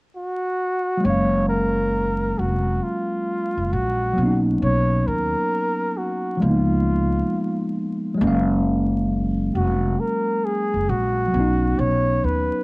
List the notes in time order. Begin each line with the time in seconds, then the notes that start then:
0.16 F#4
0.97 F#3 G#3
1.04 F#1 A#3 C#4 C#5
1.10 F5
1.49 A#4
2.39 F1 F#4
2.83 F4
3.57 F#1
3.73 A#1 F#4
4.13 F#3 A#3
4.18 B1 B3
4.23 C#4 D#4
4.62 B1 C#5
5.07 D#2 A#4
5.97 F#4
6.37 F3 G#3
6.42 C#2 A#3 F4
6.47 B3 D#4
8.14 F#3 G#3
8.21 F#1 A#3 C#4
8.27 F5
9.55 F1 F#4
10.00 A#4
10.45 G#4
10.74 F#1
10.89 A#1 F#4
11.27 F#3
11.34 B1 B3 C#4
11.40 D#4
11.79 B1 C#5
12.24 D#2 B4